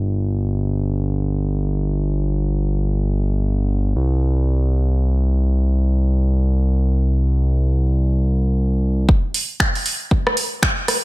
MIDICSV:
0, 0, Header, 1, 3, 480
1, 0, Start_track
1, 0, Tempo, 500000
1, 10599, End_track
2, 0, Start_track
2, 0, Title_t, "Analog synth bass"
2, 0, Program_c, 0, 38
2, 0, Note_on_c, 0, 31, 90
2, 3781, Note_off_c, 0, 31, 0
2, 3801, Note_on_c, 0, 36, 87
2, 8704, Note_off_c, 0, 36, 0
2, 10599, End_track
3, 0, Start_track
3, 0, Title_t, "Drums"
3, 8723, Note_on_c, 9, 36, 119
3, 8819, Note_off_c, 9, 36, 0
3, 8970, Note_on_c, 9, 46, 98
3, 9066, Note_off_c, 9, 46, 0
3, 9215, Note_on_c, 9, 36, 100
3, 9218, Note_on_c, 9, 26, 121
3, 9311, Note_off_c, 9, 36, 0
3, 9314, Note_off_c, 9, 26, 0
3, 9364, Note_on_c, 9, 46, 63
3, 9460, Note_off_c, 9, 46, 0
3, 9463, Note_on_c, 9, 46, 101
3, 9559, Note_off_c, 9, 46, 0
3, 9708, Note_on_c, 9, 36, 111
3, 9804, Note_off_c, 9, 36, 0
3, 9856, Note_on_c, 9, 37, 78
3, 9952, Note_off_c, 9, 37, 0
3, 9955, Note_on_c, 9, 46, 97
3, 10051, Note_off_c, 9, 46, 0
3, 10200, Note_on_c, 9, 36, 108
3, 10203, Note_on_c, 9, 26, 121
3, 10296, Note_off_c, 9, 36, 0
3, 10299, Note_off_c, 9, 26, 0
3, 10447, Note_on_c, 9, 37, 62
3, 10447, Note_on_c, 9, 46, 111
3, 10543, Note_off_c, 9, 37, 0
3, 10543, Note_off_c, 9, 46, 0
3, 10599, End_track
0, 0, End_of_file